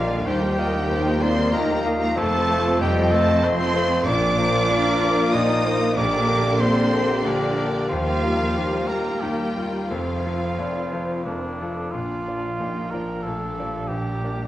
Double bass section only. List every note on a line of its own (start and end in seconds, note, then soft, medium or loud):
0.00 0.22 A#1 medium
0.26 2.17 D#2 loud
2.17 4.07 F2 loud
4.06 4.59 A#1 loud
5.97 6.50 A#1 loud
7.90 8.45 D#2 medium
9.90 10.47 F2 medium
11.92 14.48 A#1 medium